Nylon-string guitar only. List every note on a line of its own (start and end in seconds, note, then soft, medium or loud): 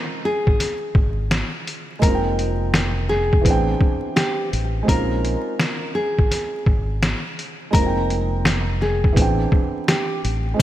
0.00 0.20 A#4 loud
0.25 1.50 G#4 medium
2.02 3.05 A#4 loud
3.09 4.13 G#4 medium
4.16 4.49 G4 medium
4.89 5.92 A#4 loud
5.95 7.20 G#4 medium
7.73 8.77 A#4 loud
8.82 9.85 G#4 medium
9.88 10.20 G4 medium